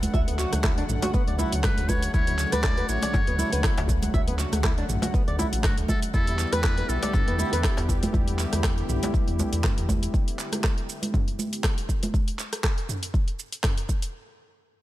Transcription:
Already playing: C#3 D3 F#3 A3 F#5
0.03 closed hi-hat, high conga, shaker
0.14 D2 E5, kick, djembe bass, shaker
0.27 B3, closed hi-hat
0.39 F#4, clap, shaker
0.52 D2, cross-stick, closed hi-hat, djembe tone, high conga, shaker
0.64 E4, kick, cross-stick, clap, shaker
0.77 D4, closed hi-hat
0.89 A1, mid tom, shaker
1.02 F#4, closed hi-hat, djembe slap, high conga, shaker
1.14 B3, kick, shaker
1.28 D2 D5, closed hi-hat
1.38 E4, high conga, djembe tone, shaker
1.52 D2, closed hi-hat, shaker
1.64 B4, kick, cross-stick, clap, mid tom, high conga, shaker
1.78 D2, closed hi-hat
1.89 B4 C#5, kick, djembe tone, high conga, shaker
2.02 closed hi-hat, shaker
2.14 D2 E4 C#5, kick, shaker
2.27 E4, closed hi-hat
2.38 clap, shaker
2.52 D2 B4 D5, cross-stick, closed hi-hat, high conga, shaker
2.64 E4, kick, cross-stick, clap, shaker
2.77 B4, closed hi-hat
2.89 A1 E4 C#5, shaker
3.02 D5, closed hi-hat, djembe slap, high conga, shaker
3.13 kick, mid tom, djembe slap, djembe tone, shaker
3.27 D2 B3, closed hi-hat
3.39 E4, high conga, shaker
3.52 D2 B4, closed hi-hat, shaker
3.64 E4, kick, cross-stick, clap, shaker
3.78 D2, closed hi-hat, djembe slap
3.87 kick, djembe tone, djembe bass, shaker
4.02 closed hi-hat, high conga, shaker
4.14 D2 E5, kick, djembe bass, shaker
4.28 B3, closed hi-hat
4.39 F#4, clap, shaker
4.52 D2, cross-stick, closed hi-hat, high conga, djembe tone, shaker
4.64 E4, kick, cross-stick, clap, shaker
4.78 D4, closed hi-hat
4.89 A1, mid tom, shaker
5.02 F#4, closed hi-hat, djembe slap, high conga, shaker
5.14 B3, kick, shaker
5.27 D2 D5, closed hi-hat
5.39 E4, high conga, djembe tone, shaker
5.52 A1, closed hi-hat, shaker
5.63 F#4, kick, cross-stick, clap, mid tom, high conga, shaker
5.77 D2, closed hi-hat
5.88 A4 E5, kick, djembe tone, high conga, shaker
6.02 closed hi-hat, shaker
6.14 E2 D3 G3 B3 E4 G4 A4, kick, shaker
6.27 E4, closed hi-hat
6.39 clap, shaker
6.52 E2 B4, cross-stick, closed hi-hat, high conga, shaker
6.64 E4, kick, cross-stick, clap, shaker
6.78 B4, closed hi-hat
6.89 B1 E4 A4, shaker
7.02 D5, closed hi-hat, djembe slap, high conga, shaker
7.13 kick, mid tom, djembe slap, djembe tone, shaker
7.27 E2 B3, closed hi-hat
7.39 E4, high conga, shaker
7.53 E2 B4, closed hi-hat, shaker
7.64 E4, kick, cross-stick, clap, shaker
7.77 E2, closed hi-hat, djembe slap
7.89 kick, djembe tone, djembe bass, shaker
8.03 closed hi-hat, high conga, shaker
8.13 E2, kick, djembe bass, shaker
8.28 closed hi-hat
8.39 clap, shaker
8.52 E2, cross-stick, closed hi-hat, djembe tone, high conga, shaker
8.64 kick, cross-stick, clap, shaker
8.78 closed hi-hat
8.89 B1, mid tom, shaker
9.03 closed hi-hat, djembe slap, high conga, shaker
9.14 kick, shaker
9.28 E2, closed hi-hat
9.39 high conga, djembe tone, shaker
9.52 E2, closed hi-hat, shaker
9.64 kick, cross-stick, clap, mid tom, high conga, shaker
9.78 E2, closed hi-hat
9.89 kick, djembe tone, high conga, shaker
10.03 closed hi-hat, shaker
10.14 kick, shaker
10.28 closed hi-hat
10.39 clap, shaker
10.52 cross-stick, closed hi-hat, high conga, shaker
10.64 kick, cross-stick, clap, shaker
10.78 closed hi-hat
10.89 shaker
11.02 closed hi-hat, high conga, shaker
11.14 kick, mid tom, shaker
11.28 closed hi-hat
11.39 high conga, shaker
11.53 closed hi-hat, shaker
11.64 kick, cross-stick, clap, shaker
11.78 closed hi-hat
11.89 kick, shaker
12.03 closed hi-hat, high conga, shaker
12.14 kick, shaker
12.28 closed hi-hat
12.39 clap, shaker
12.53 cross-stick, closed hi-hat, shaker
12.64 kick, cross-stick, clap, shaker
12.78 closed hi-hat
12.89 mid tom, shaker
13.03 closed hi-hat, shaker
13.14 kick, shaker
13.28 closed hi-hat
13.39 shaker
13.52 closed hi-hat, shaker
13.64 kick, cross-stick, clap, mid tom, shaker
13.78 closed hi-hat
13.89 kick, shaker
14.02 closed hi-hat, shaker

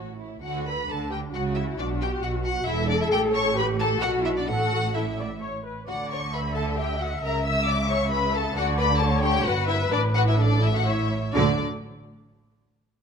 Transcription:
Already playing: A1 A2 F#4 C#5
0.19 E4
0.42 D2 D3 F#4 F#5
0.65 B4 B5
0.88 D2 D3 D4 A4 A5
1.11 G4 G5
1.34 C#2 C#3 F#4 F#5
1.55 E4 E5
1.78 B1 B2 D4 D5
2.01 G4 G5
2.23 B1 B2 F#4 F#5
2.45 F#4 F#5
2.67 E1 E2 E4 A4 E5
2.89 D4 D5
3.01 E4 E5
3.12 A1 A2 G4 G5
3.34 C#5 C#6
3.57 G4 B4 B5
3.79 A4 A5
4.02 B1 B2 F#4 F#5
4.24 E4 E5
4.37 D4 D5
4.48 A1 A2 F#4 A4 F#5
4.94 E4 A4 E5
5.19 D5
5.41 C#5
5.64 B4
5.87 D2 D3 F#4 D5 F#5
6.11 C#5 C#6
6.33 B4 E5 B5
6.55 A4 A5
6.78 G4 G5
7.00 F#4 F#5
7.23 C#2 C#3 A#4 A#5
7.45 E5 E6
7.67 D5 D6
7.89 C#5 C#6
8.12 B4 B5
8.34 A4 A5
8.56 D2 D3 F#4 D5 F#5
8.78 B4 B5
9.00 A4 C#5 A5
9.23 G4 G5
9.45 G1 G2 F#4 B4 F#5
9.68 E4 E5
9.92 A1 A2 D4 D5
10.15 F#4 F#5
10.28 E4 E5
10.38 D4 A4 D5
10.61 E4 E5
10.73 F#4 F#5
10.85 E4 C#5 E5
11.33 D2 D3 F#3 A3 D4 D5

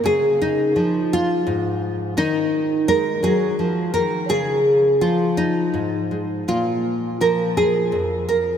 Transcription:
0.04 C#3 G#4
0.42 D#4
0.76 F3
1.13 F4
1.47 G#2
2.17 D#3 D#4
2.88 G#3 A#4
3.23 F#3 G#4
3.59 F3
3.94 D#3 A#4
4.29 C#3 G#4
5.01 F3 F4
5.37 D#4
5.74 G#2
6.11 G#3
6.48 A#2 F4
7.21 F3 A#4
7.57 G#4
7.92 F2
8.29 A#4

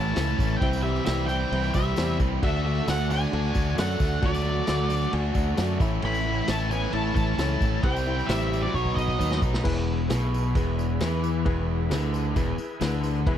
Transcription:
Already playing: A1 A2 E3 A3 C#4 E4 A4 C#5 A5
0.16 C#2 A2 E3 A3 C#4 E4 A4 C#5 E5, snare, tambourine, crash
0.38 A1 A3 C#4 E4, kick, tambourine
0.57 C3 G5
0.61 C2 E3 G3 C4 E4 G4 C5 E5, kick, tambourine, crash
0.73 tambourine
0.83 G3 C4 E4 G4 C5 E5
0.96 tambourine
1.06 C2 E3 G3 C4 E4 G4 C5 E5, snare, tambourine, crash
1.26 C3 E3 G3 C4 E4 G5, tambourine
1.40 tambourine
1.51 C2 C3 E3 G3 C4 E4 G4 C5 E5, crash
1.63 tambourine
1.74 C2 G3 C4 E4 E5, kick, tambourine
1.96 E2 C3 E3 G3 C4 E4 G4 C5 D5, snare, tambourine, crash
2.19 C2 G3 C4 E4, kick, tambourine
2.42 D2 D3 A3 D4 F#4 A4 D5 E5 F#5, kick, tambourine, crash
2.65 A3 D4 F#4 A4 D5 F#5
2.88 D2 D3 A3 D4 F#4 A4 D5 F#5, snare, tambourine, crash
3.10 D3 A3 D4 F#4 G#5, tambourine
3.32 D2 D3 A3 D4 F#4 A4 D5 F#5, crash
3.55 D2 A3 D4 F#4, kick, tambourine
3.77 F#2 D3 A3 D4 F#4 A4 D5 F#5, snare, tambourine, crash
3.99 D2 A3 D4 F#4, kick, tambourine
4.22 D2 D3 F#3 A3 D4 F#4 A4 D5 F#5, kick, tambourine, crash
4.34 tambourine
4.44 A3 D4 F#4 A4 D5 E5
4.66 D2 D3 A3 D4 F#4 A4 D5 F#5, snare, tambourine, crash
4.89 D3 A3 D4 F#4, tambourine
5.11 D2 D3 A3 D4 F#4 A4 D5 G#5, crash
5.34 D2 A3 D4 F#4 F#5, kick, tambourine
5.56 F#2 D3 A3 D4 F#4 A4 D5 A5, snare, tambourine, crash
5.80 A1 A2 E3 A3 C#4 E4 A4 C#5 E5, kick, tambourine
6.01 A1 A2 E3 A3 C#4 E4, tambourine, crash
6.05 B5
6.14 tambourine
6.24 A3 C#4 E4 A4 C#5 F#5
6.48 A1 E3 A3 C#4 E4 A4 C#5 E5 A5, snare, tambourine, crash
6.70 A2 E3 A3 B3 C#4 E4 G#5, tambourine
6.93 A1 A2 E3 A3 C#4 E4 A4 C#5 E5 A5, crash
7.15 A1 A3 C#4 E4 A5, kick, tambourine
7.37 C#2 A2 E3 A3 C#4 E4 A4 C#5 E5, snare, tambourine, crash
7.61 A1 A3 C#4 E4, kick, tambourine
7.83 C2 C3 G3 C4 E4 G4 C5 E5 G5, kick, crash
7.96 tambourine
8.06 G3 C4 E4 G4 C5 E5, tambourine
8.19 tambourine
8.26 A1 C3 G3 C4 E4 G4 C5 E5, snare, tambourine, crash
8.31 E4
8.51 C3 G3 C4 E4, tambourine
8.63 F#3 D5
8.74 B1 B2 F#3 B3 D#4 F#4 B4 C#5, kick, tambourine
8.85 kick
8.96 B1 F#3 B3 D#4 D#5, kick, tambourine
9.08 kick, tambourine
9.19 D#2 B2 F#3 B3 D#4 F#4 B4 C#5, kick, tambourine
9.31 snare, tambourine
9.41 B1 F#3 B3 D#4, kick, tambourine
9.54 snare, tambourine
9.64 E1 E2 E4 G#4 B4, kick, crash
10.09 B1 B2 E4 G#4 B4, snare, tambourine, crash
10.34 tambourine
10.55 E1 E2 E4 G#4 B4, kick, tambourine, crash
10.79 tambourine
11.00 E2 E3 E4 G#4 B4, snare, tambourine, crash
11.24 tambourine
11.45 E1 E2 E4 G#4 B4, kick, crash
11.90 D2 D3 E4 G#4 B4, snare, tambourine, crash
12.14 tambourine
12.35 E1 E2 E4 G#4 B4, kick, tambourine, crash
12.58 muted overdriven electric guitar stroke, muted fingered electric bass stroke, tambourine
12.81 D2 D3 E4 G#4 B4, snare, tambourine, crash
13.04 tambourine
13.26 E1 E2 E4 G#4 B4 E5, kick, crash

